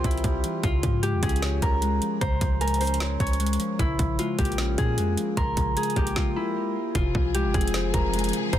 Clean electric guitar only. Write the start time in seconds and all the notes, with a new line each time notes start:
Already playing: E3 G3 C4 C5
0.24 G3
0.44 E3
0.64 C#3
0.83 F3
1.03 G#3
1.23 C#4
1.42 C#5
1.82 G#3
2.02 F3
2.22 C#3
2.41 F3
2.61 G#3
2.81 C#4
3.00 C#5
3.40 G#3
3.59 F3
3.80 C#3
3.99 F3
4.19 G#3
4.38 A#3
4.58 C#4
4.98 G#3
5.18 F3
5.37 C#3
5.57 F3
5.77 G#3
5.96 A#3
6.95 C3
7.15 F3
7.35 G#3
7.54 C4
7.74 C5
8.14 G#3
8.33 F3
8.53 C3